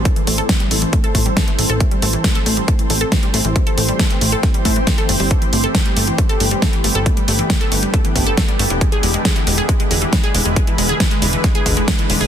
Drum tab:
HH |xxoxxxoxxxoxxxox|xxoxxxoxxxoxxxox|xxoxxxoxxxoxxxoo|xxoxxxoxxxoxxxox|
SD |----o-------o---|----o-------o---|----o---o---o---|----o-------o---|
BD |o---o---o-o-o---|o---o---o---o---|o---o---o-o-o---|o---o---o---o---|

HH |xxoxxxoxxxoxxxox|xxoxxxoxxxoxxxox|xxoxxxoxxxoxxxoo|
SD |----o-------o---|----o-------o---|----o---o---o---|
BD |o---o---o-o-o---|o---o---o---o---|o---o---o-o-o---|